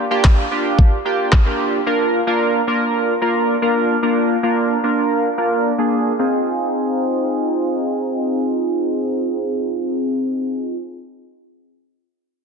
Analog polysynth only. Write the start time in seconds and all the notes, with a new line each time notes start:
0.11 A#3 D4 F4 G4
0.51 A#3 D4 F4 G4
1.05 A#3 D4 F4 G4
1.46 A#3 D4 F4 G4
1.86 A#3 D4 F4 A#4
2.27 A#3 D4 F4 A#4
2.67 A#3 D4 F4 A#4
3.22 A#3 D4 F4 A#4
3.62 A#3 D4 F4 A#4
4.03 A#3 D4 F4 A#4
4.43 A#3 D4 F4 A#4
4.84 A#3 D4 F4 A#4
5.38 A#3 D4 F4 A#4
5.78 A#3 D4 F4 G#4
6.19 C4 D#4 F4 G#4